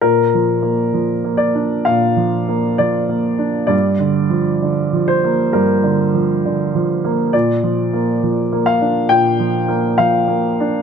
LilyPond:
<<
  \new Staff \with { instrumentName = "Grand piano" } { \time 4/4 \key bes \major \tempo 4 = 66 bes'4. d''8 f''4 d''4 | d''4. c''8 bes'4. r8 | d''4. f''8 g''4 f''4 | }
  \new Staff \with { instrumentName = "Grand piano" } { \clef bass \time 4/4 \key bes \major \tuplet 3/2 { bes,8 f8 bes8 f8 bes8 d'8 bes,8 f8 bes8 f8 bes8 d'8 } | \tuplet 3/2 { g,8 d8 f8 d8 f8 bes8 g,8 d8 f8 d8 f8 bes8 } | \tuplet 3/2 { bes,8 f8 bes8 f8 bes8 d'8 bes,8 f8 bes8 f8 bes8 d'8 } | }
>>